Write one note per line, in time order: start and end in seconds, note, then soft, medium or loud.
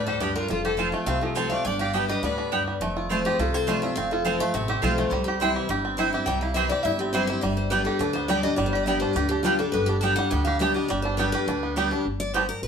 0.00 0.35 D2 medium
0.00 0.19 A2 medium
0.00 0.33 G3 medium
0.00 0.18 D4 medium
0.06 0.48 G4 medium
0.06 0.23 A4 medium
0.06 0.21 C5 medium
0.20 0.48 G2 medium
0.20 0.30 B3 medium
0.20 0.50 D4 medium
0.20 0.30 G4 medium
0.20 0.36 G4 medium
0.20 0.35 B4 medium
0.20 0.31 D5 medium
0.20 0.31 G5 medium
0.36 0.50 G3 medium
0.36 0.50 F4 medium
0.36 0.49 A#4 loud
0.48 0.93 F1 medium
0.48 1.04 F2 medium
0.48 0.78 F4 medium
0.48 0.64 F4 medium
0.48 0.64 A4 medium
0.65 1.05 G4 medium
0.65 0.78 A4 medium
0.65 0.73 C5 medium
0.77 0.92 F3 medium
0.77 0.92 A3 medium
0.77 0.88 C4 medium
0.77 0.93 C4 medium
0.77 0.88 F4 medium
0.77 1.20 F4 medium
0.77 0.91 F4 medium
0.77 0.88 C5 medium
0.77 0.88 A5 medium
0.92 1.34 A3 medium
0.92 1.07 C4 medium
0.92 1.06 F4 medium
1.06 1.50 C2 medium
1.06 1.62 C3 loud
1.06 1.36 C4 medium
1.06 1.22 C5 medium
1.06 1.21 F5 medium
1.21 1.63 F3 medium
1.21 1.39 F4 soft
1.21 1.35 A4 medium
1.35 1.50 F3 medium
1.35 1.51 A3 medium
1.35 1.45 C4 medium
1.35 1.51 C4 medium
1.35 1.66 C4 medium
1.35 1.46 F4 medium
1.35 1.49 F4 medium
1.35 1.51 A4 medium
1.35 1.50 C5 medium
1.35 1.46 C5 medium
1.35 1.46 A5 loud
1.50 1.66 A3 medium
1.50 1.65 C4 soft
1.50 1.64 F4 medium
1.50 1.66 D5 medium
1.50 1.65 F5 medium
1.65 2.09 G1 medium
1.65 2.20 G2 medium
1.65 1.93 D4 medium
1.65 1.80 D5 medium
1.65 1.79 G5 loud
1.79 2.21 G4 medium
1.79 1.97 D5 medium
1.79 1.93 F5 medium
1.93 2.08 G3 medium
1.93 2.03 B3 medium
1.93 2.09 B3 medium
1.93 2.35 D4 medium
1.93 2.09 D4 medium
1.93 2.04 G4 medium
1.93 2.07 G4 medium
1.93 2.08 B4 medium
1.93 2.04 D5 medium
1.93 2.08 E5 medium
1.93 2.04 G5 loud
2.08 2.50 G3 medium
2.08 2.23 D4 soft
2.08 2.22 G4 medium
2.08 2.22 B4 medium
2.08 2.23 D#5 loud
2.22 2.66 D2 medium
2.22 2.51 A2 medium
2.22 2.51 B3 medium
2.22 2.71 B4 medium
2.22 2.71 D5 medium
2.38 2.78 D3 medium
2.52 2.80 G2 medium
2.52 2.61 B3 medium
2.52 2.81 B3 medium
2.52 2.61 G4 medium
2.52 2.62 D5 medium
2.52 2.62 G5 medium
2.67 2.81 G3 soft
2.80 3.24 F1 medium
2.80 3.36 F2 medium
2.80 3.10 A3 medium
2.97 3.36 F4 medium
3.09 3.38 F3 medium
3.09 3.51 A3 medium
3.09 3.38 A3 medium
3.09 3.19 C4 medium
3.09 3.38 C4 medium
3.09 3.19 F4 medium
3.09 3.39 F4 medium
3.09 3.19 C5 medium
3.09 3.20 A5 medium
3.25 3.66 G4 medium
3.25 3.39 G#4 medium
3.39 3.82 C2 medium
3.39 3.94 C3 medium
3.39 3.80 F4 medium
3.39 3.54 A4 medium
3.54 3.97 C4 medium
3.54 3.69 C5 loud
3.67 3.82 F3 medium
3.67 3.82 A3 loud
3.67 4.09 A3 medium
3.67 3.77 C4 medium
3.67 3.82 C4 medium
3.67 3.77 F4 medium
3.67 3.81 F4 medium
3.67 3.77 C5 medium
3.67 3.82 D5 medium
3.67 3.77 A5 medium
3.82 3.97 C4 medium
3.82 3.96 F4 medium
3.82 4.11 F4 medium
3.82 3.95 E5 medium
3.96 4.40 F1 medium
3.96 4.52 F2 medium
3.96 4.26 C4 medium
3.96 4.11 F5 loud
4.11 4.52 F4 medium
4.11 4.25 A4 medium
4.25 4.39 F3 medium
4.25 4.40 A3 medium
4.25 4.34 C4 medium
4.25 4.40 C4 medium
4.25 4.54 C4 medium
4.25 4.35 F4 medium
4.25 4.38 F4 medium
4.25 4.40 C5 medium
4.25 4.35 C5 medium
4.25 4.35 A5 loud
4.39 4.81 A3 medium
4.39 4.54 C4 soft
4.39 4.53 F4 medium
4.39 4.54 F5 loud
4.54 4.79 A1 medium
4.54 5.09 C3 loud
4.54 5.84 C4 medium
4.54 4.69 E5 medium
4.68 5.10 G4 medium
4.68 4.81 C5 medium
4.82 5.08 B1 medium
4.82 5.10 F3 medium
4.82 5.11 A3 medium
4.82 4.92 C4 medium
4.82 5.11 C4 loud
4.82 4.92 F4 medium
4.82 5.12 F4 medium
4.82 5.11 F4 medium
4.82 4.97 A4 medium
4.82 4.92 C5 loud
4.82 4.93 A5 medium
4.98 5.12 A3 medium
4.98 5.10 F4 medium
5.10 5.55 C2 medium
5.10 5.67 C3 medium
5.10 5.56 G3 medium
5.10 5.24 E4 medium
5.24 5.33 G4 medium
5.24 5.70 G4 medium
5.40 5.68 E3 medium
5.40 5.68 G3 medium
5.40 5.50 C4 medium
5.40 5.69 C4 medium
5.40 5.50 E4 medium
5.40 5.82 E4 medium
5.40 5.69 E4 medium
5.40 5.50 C5 medium
5.40 5.51 G5 medium
5.56 6.27 G3 medium
5.69 6.13 G1 medium
5.69 6.24 G2 loud
5.69 6.14 G4 medium
5.85 6.25 C4 medium
5.97 6.12 E3 medium
5.97 6.13 G3 medium
5.97 6.08 C4 medium
5.97 6.13 C4 medium
5.97 6.08 E4 medium
5.97 6.40 E4 medium
5.97 6.11 E4 loud
5.97 6.08 C5 loud
5.97 6.08 G5 loud
6.13 6.28 C4 medium
6.13 6.27 E4 medium
6.13 6.71 G4 medium
6.26 6.70 C2 medium
6.26 6.82 C3 medium
6.26 6.56 G3 medium
6.26 6.41 G5 loud
6.41 6.83 E4 medium
6.41 6.54 F5 medium
6.54 6.70 E3 medium
6.54 6.70 G3 medium
6.54 7.14 G3 medium
6.54 6.65 C4 medium
6.54 6.71 C4 medium
6.54 6.65 E4 medium
6.54 6.69 E4 loud
6.54 6.66 C5 loud
6.54 6.69 E5 medium
6.54 6.66 G5 medium
6.69 6.85 C4 medium
6.69 6.84 E4 medium
6.69 7.86 G4 medium
6.69 6.83 D5 loud
6.83 7.28 G1 medium
6.83 7.40 G2 medium
6.83 7.26 E4 medium
6.83 6.99 E5 medium
6.99 7.41 C4 medium
6.99 7.13 G4 medium
7.13 7.28 E3 medium
7.13 7.28 G3 loud
7.13 7.43 G3 medium
7.13 7.23 C4 medium
7.13 7.28 C4 medium
7.13 7.23 E4 medium
7.13 7.27 E4 loud
7.13 7.28 C5 medium
7.13 7.24 C5 loud
7.13 7.24 G5 loud
7.27 7.43 C4 soft
7.27 7.42 E4 medium
7.27 7.44 E4 medium
7.27 7.41 E5 loud
7.41 7.86 G1 medium
7.41 7.98 G2 medium
7.41 7.72 G3 medium
7.41 7.57 D5 medium
7.57 7.70 C5 medium
7.70 7.99 G3 medium
7.70 8.29 G3 medium
7.70 7.81 B3 medium
7.70 7.99 B3 medium
7.70 8.00 D4 medium
7.70 7.81 G4 medium
7.70 8.00 G4 medium
7.70 7.84 B4 medium
7.70 7.81 D5 medium
7.70 7.81 G5 loud
7.85 8.72 G4 medium
7.85 7.99 A4 medium
7.99 8.44 D2 medium
7.99 8.56 D3 loud
7.99 8.44 D4 medium
7.99 8.13 B4 medium
8.13 9.55 B3 medium
8.13 8.28 C5 loud
8.28 8.44 G3 medium
8.28 8.57 G3 medium
8.28 8.39 B3 medium
8.28 8.44 B3 medium
8.28 8.44 D4 loud
8.28 8.39 G4 medium
8.28 8.42 G4 medium
8.28 8.43 D5 medium
8.28 8.39 D5 loud
8.28 8.39 G5 loud
8.43 9.01 D4 medium
8.43 8.58 D4 medium
8.43 8.58 G4 medium
8.43 8.56 D#5 loud
8.56 9.02 G1 medium
8.56 9.13 G2 medium
8.56 8.87 G3 medium
8.56 8.67 D5 medium
8.66 8.77 C5 medium
8.73 9.16 G4 medium
8.73 8.86 D5 medium
8.86 9.14 G3 medium
8.86 9.59 G3 medium
8.86 9.15 B3 medium
8.86 8.97 B3 loud
8.86 9.15 D4 medium
8.86 8.97 G4 medium
8.86 9.15 G4 medium
8.86 8.97 D5 loud
8.86 9.01 E5 loud
8.86 8.97 G5 loud
9.00 9.31 D4 medium
9.00 9.13 C5 medium
9.13 9.59 D2 medium
9.13 9.71 D3 loud
9.13 10.47 G4 medium
9.13 9.29 B4 medium
9.29 9.89 D4 medium
9.29 9.42 G4 loud
9.43 9.86 D3 medium
9.43 9.59 G3 medium
9.43 9.59 B3 medium
9.43 9.54 B3 medium
9.43 9.60 D4 loud
9.43 9.59 F4 medium
9.43 9.55 G4 loud
9.43 9.58 G4 loud
9.43 9.55 D5 medium
9.43 9.55 G5 loud
9.59 10.18 G3 medium
9.59 9.74 D4 soft
9.59 9.73 G4 medium
9.59 9.71 A4 medium
9.72 10.17 G1 medium
9.72 10.29 G2 medium
9.72 10.03 B3 medium
9.72 9.88 B4 loud
9.86 10.61 D4 medium
9.86 9.96 G4 medium
10.01 10.17 G3 medium
10.01 10.12 B3 medium
10.01 10.17 B3 medium
10.01 10.32 B3 medium
10.01 10.17 D4 medium
10.01 10.12 G4 loud
10.01 10.15 G4 medium
10.01 10.13 D5 medium
10.01 10.13 G5 loud
10.01 10.15 A5 loud
10.16 10.76 G3 medium
10.16 10.32 D4 soft
10.16 10.31 G4 medium
10.16 10.30 F#5 loud
10.30 10.76 D2 medium
10.30 10.87 D3 loud
10.30 11.63 B3 medium
10.30 10.44 G5 loud
10.45 11.34 G4 medium
10.45 10.60 F5 medium
10.59 10.75 G3 medium
10.59 10.75 B3 medium
10.59 10.70 B3 medium
10.59 10.75 D4 medium
10.59 11.02 D4 medium
10.59 10.71 G4 medium
10.59 10.73 G4 loud
10.59 10.71 D5 medium
10.59 10.74 E5 medium
10.59 10.71 G5 loud
10.74 10.89 G3 medium
10.74 10.90 D4 medium
10.74 10.89 G4 medium
10.74 10.89 D#5 loud
10.88 11.34 G1 medium
10.88 11.45 G2 loud
10.88 11.18 G3 medium
10.88 11.02 D5 medium
11.02 11.45 D4 medium
11.02 11.17 C5 medium
11.17 11.46 G3 medium
11.17 11.60 G3 medium
11.17 11.28 B3 medium
11.17 11.47 B3 medium
11.17 11.47 D4 medium
11.17 11.28 G4 medium
11.17 11.47 G4 medium
11.17 11.31 B4 medium
11.17 11.28 D5 medium
11.17 11.28 G5 medium
11.32 11.74 G4 medium
11.32 11.73 B4 loud
11.48 11.91 D2 medium
11.48 12.03 D3 medium
11.48 11.89 D4 medium
11.63 12.03 B3 medium
11.76 11.91 G3 medium
11.76 12.06 G3 medium
11.76 11.86 B3 medium
11.76 11.91 B3 loud
11.76 11.91 D4 loud
11.76 11.86 G4 medium
11.76 11.90 G4 medium
11.76 11.86 D5 medium
11.76 11.87 G5 medium
11.91 12.06 D4 medium
11.91 12.06 D4 soft
11.91 12.05 G4 medium
12.05 12.49 G1 medium
12.20 12.34 D5 loud
12.34 12.42 G3 medium
12.34 12.43 B3 medium
12.34 12.42 B3 medium
12.34 12.42 D4 medium
12.34 12.44 G4 medium
12.34 12.48 C5 medium
12.34 12.44 D5 medium
12.34 12.44 G5 medium
12.49 12.63 A#4 medium
12.62 12.68 A1 medium
12.62 12.68 B4 medium